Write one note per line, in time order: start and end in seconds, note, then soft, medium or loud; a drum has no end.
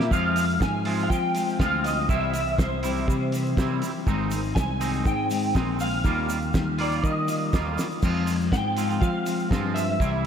0.00 0.12 G3 medium
0.00 0.10 A#3 medium
0.00 0.12 E4 medium
0.00 0.11 G4 medium
0.00 0.11 A#4 medium
0.00 snare medium
0.11 0.57 F2 medium
0.11 0.60 F3 loud
0.11 0.37 G#3 medium
0.11 0.37 C4 medium
0.11 0.35 F4 loud
0.11 0.62 F5 loud
0.11 kick loud
0.11 shaker medium
0.36 0.61 G#3 medium
0.36 0.62 C4 medium
0.36 0.62 F4 medium
0.36 open hi-hat medium
0.36 shaker medium
0.50 shaker soft
0.60 1.07 G#2 medium
0.60 0.86 F3 medium
0.60 0.86 G#3 medium
0.60 0.86 C4 medium
0.60 0.84 F4 medium
0.60 1.01 G#5 loud
0.60 kick loud
0.60 snare loud
0.60 shaker medium
0.85 1.09 F3 medium
0.85 1.10 G#3 medium
0.85 1.12 C4 medium
0.85 1.11 F4 medium
0.85 open hi-hat medium
0.99 shaker soft
1.03 1.09 F5 medium
1.10 1.57 F3 loud
1.10 1.37 F3 medium
1.10 1.36 G#3 medium
1.10 1.36 C4 medium
1.10 1.34 F4 medium
1.10 1.60 G5 loud
1.10 kick loud
1.10 shaker medium
1.35 1.59 F3 medium
1.35 1.60 G#3 medium
1.35 1.61 C4 medium
1.35 1.61 F4 medium
1.35 open hi-hat medium
1.35 shaker medium
1.49 shaker soft
1.60 2.06 D2 medium
1.60 2.08 F3 medium
1.60 1.86 G#3 medium
1.60 1.86 C4 medium
1.60 1.84 F4 loud
1.60 1.85 F5 loud
1.60 kick loud
1.60 snare loud
1.60 shaker medium
1.84 2.09 G#3 medium
1.84 2.11 C4 medium
1.84 2.08 F4 medium
1.84 2.09 D#5 medium
1.84 open hi-hat medium
1.84 shaker medium
2.09 2.56 C2 loud
2.09 2.59 C3 medium
2.09 2.57 E3 loud
2.09 2.34 G3 medium
2.09 2.34 C4 loud
2.09 2.32 E4 loud
2.09 2.32 E5 loud
2.09 kick loud
2.09 shaker medium
2.33 2.60 C4 medium
2.33 2.60 E4 medium
2.33 2.59 E5 medium
2.33 open hi-hat medium
2.33 shaker medium
2.47 shaker soft
2.58 3.05 C2 loud
2.58 2.84 E3 medium
2.58 2.84 G3 medium
2.58 2.84 C4 medium
2.58 2.83 E4 medium
2.58 3.54 C5 medium
2.58 kick loud
2.58 snare loud
2.58 shaker medium
2.83 3.34 C3 medium
2.83 3.07 E3 medium
2.83 3.08 G3 medium
2.83 3.09 C4 medium
2.83 3.09 E4 medium
2.83 open hi-hat medium
2.83 shaker loud
2.97 shaker soft
3.08 3.54 C3 loud
3.08 3.34 E3 medium
3.08 3.34 G3 medium
3.08 3.33 C4 medium
3.08 3.32 E4 medium
3.08 kick loud
3.08 shaker medium
3.32 3.84 C3 medium
3.32 3.58 E3 medium
3.32 3.58 G3 medium
3.32 3.59 C4 medium
3.32 3.60 E4 medium
3.32 open hi-hat medium
3.32 shaker medium
3.46 shaker soft
3.57 3.81 C3 medium
3.57 3.90 C3 loud
3.57 4.06 E3 medium
3.57 3.84 G3 medium
3.57 3.83 C4 medium
3.57 kick loud
3.57 snare loud
3.57 shaker medium
3.61 3.82 E4 medium
3.82 4.07 G3 medium
3.82 4.07 C4 medium
3.82 4.06 E4 medium
3.82 open hi-hat medium
3.82 shaker medium
4.07 4.54 G#1 loud
4.07 4.57 G#2 medium
4.07 4.56 D#3 loud
4.07 4.34 G#3 loud
4.07 4.32 C4 loud
4.07 4.32 D#4 loud
4.07 kick loud
4.07 shaker medium
4.31 4.56 G#3 medium
4.31 4.57 C4 medium
4.31 4.59 D#4 medium
4.31 open hi-hat medium
4.31 shaker medium
4.44 shaker soft
4.55 5.03 C2 medium
4.55 4.82 D#3 medium
4.55 4.81 G#3 medium
4.55 4.81 C4 medium
4.55 4.81 D#4 medium
4.55 5.02 G#5 loud
4.55 kick loud
4.55 snare loud
4.55 shaker medium
4.81 5.31 G#2 medium
4.81 5.04 D#3 medium
4.81 5.05 G#3 medium
4.81 5.05 C4 medium
4.81 5.06 D#4 medium
4.81 open hi-hat medium
4.81 shaker medium
4.94 shaker soft
5.05 5.52 G#2 loud
5.05 5.30 D#3 medium
5.05 5.30 G#3 medium
5.05 5.29 C4 medium
5.05 5.29 D#4 medium
5.05 5.52 G5 loud
5.05 kick loud
5.05 shaker medium
5.30 5.81 G#2 medium
5.30 5.53 D#3 medium
5.30 5.53 G#3 medium
5.30 5.54 C4 medium
5.30 5.55 D#4 medium
5.30 open hi-hat medium
5.30 shaker medium
5.43 shaker soft
5.54 6.02 A#1 medium
5.54 6.03 D#3 medium
5.54 5.80 G#3 medium
5.54 5.79 C4 medium
5.54 5.78 D#4 medium
5.54 kick loud
5.54 snare loud
5.54 shaker medium
5.79 6.04 G#3 medium
5.79 6.03 C4 medium
5.79 6.03 D#4 medium
5.79 6.75 F5 loud
5.79 open hi-hat medium
5.79 shaker medium
6.04 6.51 D#2 loud
6.04 6.52 D#3 medium
6.04 6.29 G3 medium
6.04 6.28 A#3 loud
6.04 6.28 F4 loud
6.04 kick loud
6.04 shaker medium
6.28 6.53 G3 medium
6.28 6.53 A#3 medium
6.28 6.55 F4 medium
6.28 open hi-hat medium
6.28 shaker medium
6.42 shaker soft
6.53 7.01 D#2 loud
6.53 6.79 D#3 medium
6.53 6.78 G3 medium
6.53 6.78 A#3 medium
6.53 6.77 F4 medium
6.53 kick loud
6.53 snare loud
6.53 shaker medium
6.78 7.02 D#3 medium
6.78 7.03 G3 medium
6.78 7.03 A#3 medium
6.78 7.04 F4 medium
6.78 7.03 D5 medium
6.78 open hi-hat medium
6.92 shaker soft
7.03 7.29 D#3 medium
7.03 7.50 D#3 medium
7.03 7.28 G3 medium
7.03 7.27 A#3 medium
7.03 7.27 F4 medium
7.03 7.74 D#5 medium
7.03 kick loud
7.03 shaker medium
7.28 7.51 D#3 medium
7.28 7.52 G3 medium
7.28 7.53 A#3 medium
7.28 7.53 F4 loud
7.28 open hi-hat medium
7.28 shaker loud
7.52 7.76 D#2 medium
7.52 8.01 D#3 medium
7.52 7.79 G3 medium
7.52 7.78 A#3 medium
7.52 7.76 F4 medium
7.52 kick loud
7.52 snare loud
7.52 shaker medium
7.77 8.02 G3 medium
7.77 8.02 A#3 medium
7.77 8.01 F4 medium
7.77 snare medium
7.77 open hi-hat medium
7.77 shaker loud
7.91 shaker soft
8.02 8.49 F2 medium
8.02 8.50 F3 medium
8.02 8.27 G#3 loud
8.02 8.27 C4 medium
8.02 8.25 F4 loud
8.02 kick loud
8.02 crash loud
8.02 shaker medium
8.26 8.52 G#3 medium
8.26 8.53 C4 medium
8.26 8.53 F4 medium
8.26 open hi-hat medium
8.26 shaker medium
8.41 shaker soft
8.52 8.98 G#2 medium
8.52 8.77 F3 medium
8.52 8.77 G#3 medium
8.52 8.77 C4 medium
8.52 8.75 F4 medium
8.52 8.98 G5 loud
8.52 kick loud
8.52 snare loud
8.52 shaker medium
8.77 9.00 F3 medium
8.77 9.01 G#3 medium
8.77 9.02 C4 medium
8.77 9.02 F4 medium
8.77 open hi-hat medium
8.77 shaker loud
8.91 shaker soft
9.01 9.26 F3 medium
9.01 9.48 F3 loud
9.01 9.26 G#3 medium
9.01 9.26 C4 medium
9.01 9.24 F4 medium
9.01 9.47 F5 loud
9.01 kick loud
9.01 shaker medium
9.25 9.49 F3 medium
9.25 9.50 G#3 medium
9.25 9.52 C4 medium
9.25 9.51 F4 medium
9.25 open hi-hat medium
9.25 shaker medium
9.40 shaker soft
9.50 9.97 G2 loud
9.50 9.98 F3 medium
9.50 9.75 G#3 medium
9.50 9.75 C4 medium
9.50 9.73 F4 medium
9.50 kick loud
9.50 snare loud
9.50 shaker medium
9.74 9.99 G#3 medium
9.74 10.00 C4 medium
9.74 9.98 F4 medium
9.74 10.27 E5 loud
9.74 open hi-hat medium
9.74 shaker medium
9.99 10.27 C2 loud
9.99 10.27 C3 loud
9.99 10.27 E3 loud
9.99 10.24 G3 loud
9.99 10.25 C4 loud
9.99 10.22 E4 loud
9.99 kick loud
9.99 shaker medium